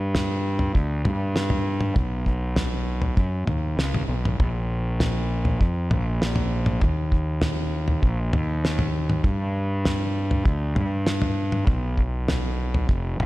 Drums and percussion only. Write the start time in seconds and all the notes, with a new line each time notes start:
0.15 snare, floor tom
0.59 floor tom
0.75 kick
1.05 floor tom, mid tom
1.36 snare
1.50 floor tom, mid tom
1.81 mid tom
1.96 kick, floor tom
2.26 kick
2.56 snare, floor tom
3.02 floor tom
3.17 kick
3.47 floor tom, mid tom
3.79 snare
3.94 floor tom, mid tom
4.25 mid tom
4.40 kick, floor tom
5.00 snare, floor tom
5.45 floor tom
5.61 kick
5.91 floor tom, mid tom
6.22 snare
6.36 floor tom, mid tom
6.66 mid tom
6.81 kick, floor tom
7.12 kick
7.42 snare, floor tom
7.88 floor tom
8.03 kick
8.33 floor tom, mid tom
8.65 snare
8.79 floor tom, mid tom
9.10 mid tom
9.24 kick, floor tom
9.85 snare, floor tom
10.31 floor tom
10.46 kick
10.76 floor tom, mid tom
11.07 snare
11.22 floor tom, mid tom
11.52 mid tom
11.67 kick, floor tom
11.98 kick
12.28 snare, floor tom
12.74 floor tom
12.89 kick
13.20 floor tom, mid tom